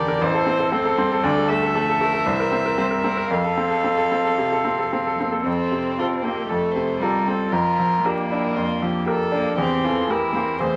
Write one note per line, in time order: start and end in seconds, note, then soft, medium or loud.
0.00 0.19 E2 medium
0.00 0.21 D3 medium
0.00 0.25 D4 medium
0.00 0.24 G4 medium
0.00 0.08 A#4 medium
0.00 0.24 D5 medium
0.08 0.21 A#4 medium
0.21 1.20 A1 medium
0.21 0.74 E3 medium
0.21 0.73 C5 medium
0.34 0.55 A4 medium
0.47 0.67 C4 medium
0.59 0.80 A4 medium
0.72 0.98 A3 medium
0.72 0.93 C4 medium
0.72 1.23 A4 medium
0.72 1.24 C5 medium
0.85 1.06 A4 medium
0.96 1.75 G3 medium
0.96 1.19 C4 medium
1.12 1.24 A4 medium
1.23 2.23 D2 medium
1.23 1.74 A4 medium
1.23 1.50 D5 medium
1.38 1.57 A4 soft
1.48 1.70 A3 soft
1.48 3.31 E5 medium
1.63 1.83 A4 medium
1.73 2.27 F3 medium
1.73 1.96 A3 medium
1.73 1.83 A4 medium
1.90 2.09 A4 medium
1.99 2.21 A3 medium
1.99 2.27 A#4 medium
2.13 2.26 A4 soft
2.25 3.29 C2 medium
2.25 2.79 E3 medium
2.25 2.77 C5 medium
2.40 2.60 A#4 medium
2.52 2.73 C4 soft
2.66 2.87 A#4 soft
2.78 3.32 G3 medium
2.78 2.99 C4 soft
2.78 2.86 C5 medium
2.91 3.13 A#4 soft
3.04 3.26 C4 medium
3.04 3.34 A#4 medium
3.17 3.31 A#4 soft
3.31 4.35 F2 medium
3.31 5.18 F3 medium
3.31 5.26 A4 medium
3.31 5.22 F5 medium
3.44 3.66 A4 soft
3.58 3.80 C4 soft
3.71 3.93 A4 soft
3.84 4.06 C4 soft
3.98 4.20 A4 soft
4.12 4.34 C4 soft
4.25 4.47 A4 soft
4.38 4.60 C3 soft
4.53 4.74 A4 soft
4.65 4.87 C4 soft
4.79 5.01 A4 soft
4.93 5.14 C4 soft
5.07 5.28 A4 soft
5.18 5.45 A#3 medium
5.18 5.41 C4 soft
5.32 5.46 A4 soft
5.44 6.47 F2 soft
5.44 6.24 C4 medium
5.44 6.25 C4 soft
5.44 5.94 A4 soft
5.71 6.13 C3 soft
5.98 6.06 F4 soft
5.98 6.22 F4 soft
5.98 6.22 A4 soft
6.23 6.48 A#3 medium
6.23 6.47 A#3 medium
6.23 6.65 C4 soft
6.23 6.50 G4 soft
6.48 7.50 F2 soft
6.48 6.99 A3 medium
6.48 7.01 A3 medium
6.48 6.74 A4 soft
6.74 7.16 C3 soft
6.74 7.03 C5 soft
7.00 7.53 G3 medium
7.00 7.51 G3 soft
7.00 7.25 F4 soft
7.00 7.25 A4 soft
7.00 7.29 A#4 soft
7.28 7.53 C4 soft
7.28 7.53 A4 medium
7.52 8.53 F2 soft
7.52 8.03 F3 medium
7.52 8.07 F4 soft
7.52 8.06 A#4 medium
7.79 8.20 F3 soft
8.03 9.04 A#3 medium
8.03 9.08 A#3 medium
8.03 8.29 D4 soft
8.03 8.28 G4 soft
8.03 8.28 A#4 soft
8.30 8.72 D4 soft
8.30 8.58 E4 soft
8.56 9.55 F2 soft
8.56 8.84 F4 soft
8.82 9.23 F3 soft
8.82 9.07 G4 soft
9.06 9.30 G4 soft
9.06 9.57 A4 medium
9.06 9.30 A#4 soft
9.32 9.56 A#3 medium
9.32 9.57 A#3 medium
9.32 9.58 D4 soft
9.57 10.57 E2 soft
9.57 10.08 C4 medium
9.57 9.87 G4 soft
9.57 9.86 G4 soft
9.84 10.25 E3 soft
9.84 10.12 F4 soft
9.84 10.12 A4 medium
10.08 10.16 A3 medium
10.08 10.60 E4 medium
10.08 10.33 G4 soft
10.08 10.33 A#4 soft
10.08 10.61 A#4 soft
10.33 10.41 A#3 medium
10.33 10.76 C4 soft
10.58 10.76 E2 soft
10.58 10.76 A3 medium
10.58 10.76 C5 medium